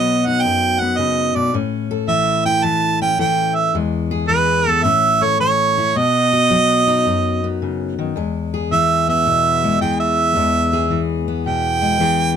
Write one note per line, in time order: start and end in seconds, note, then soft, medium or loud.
0.00 0.44 B2 medium
0.00 1.52 F#3 medium
0.00 0.81 B3 medium
0.00 1.52 F#4 medium
0.00 0.28 D#5 medium
0.27 1.53 D#4 medium
0.27 0.44 F#5 medium
0.42 1.53 F#2 medium
0.42 0.81 G5 loud
0.80 1.53 B3 medium
0.80 0.99 F#5 medium
0.97 1.35 C#3 medium
0.97 1.37 D#5 medium
1.35 1.54 B2 medium
1.35 1.54 D5 medium
1.54 3.72 A2 medium
1.54 3.00 C#4 medium
1.91 3.18 A4 medium
2.08 2.63 E3 medium
2.08 2.43 E5 medium
2.46 3.73 E4 medium
2.46 2.66 G5 medium
2.64 3.18 E3 medium
2.64 3.01 A5 loud
3.01 3.73 C#4 medium
3.01 3.19 G5 medium
3.19 4.28 E3 medium
3.19 3.72 A4 medium
3.19 3.56 G5 medium
3.55 3.74 E5 medium
3.75 4.83 E2 medium
3.75 4.84 G#3 medium
4.11 4.83 G#4 medium
4.28 5.39 E3 medium
4.28 4.69 B4 medium
4.67 4.85 B3 medium
4.67 4.85 A4 medium
4.83 5.93 A2 medium
4.83 5.93 C#4 medium
4.83 5.24 E5 loud
5.21 5.93 A4 medium
5.21 5.40 C#5 medium
5.40 5.95 E3 medium
5.40 5.99 C#5 medium
5.78 5.94 E4 medium
5.96 7.06 B2 medium
5.96 7.43 B3 medium
5.96 7.62 D#5 loud
6.33 8.14 F#4 medium
6.50 8.13 F#3 medium
6.87 8.14 D#4 medium
7.05 8.13 F#2 medium
7.44 8.14 B3 medium
7.62 7.98 C#3 medium
7.99 8.16 D#3 medium
8.16 10.35 E2 medium
8.16 9.64 G#3 medium
8.54 9.81 G#4 medium
8.72 9.80 E3 medium
8.72 9.07 E5 loud
9.09 11.27 B3 medium
9.09 9.80 E5 medium
9.27 9.81 B2 medium
9.64 10.36 G#3 medium
9.81 10.90 E3 medium
9.81 10.73 G#4 medium
9.81 9.99 G5 medium
10.00 11.06 E5 medium
10.35 12.37 E2 medium
10.35 11.81 G#3 medium
10.73 12.00 G#4 medium
10.91 12.00 E3 medium
11.28 12.37 B3 medium
11.46 12.01 B2 medium
11.46 12.37 G5 loud
11.82 12.37 G#3 medium
12.00 12.37 E3 medium
12.00 12.37 G#4 medium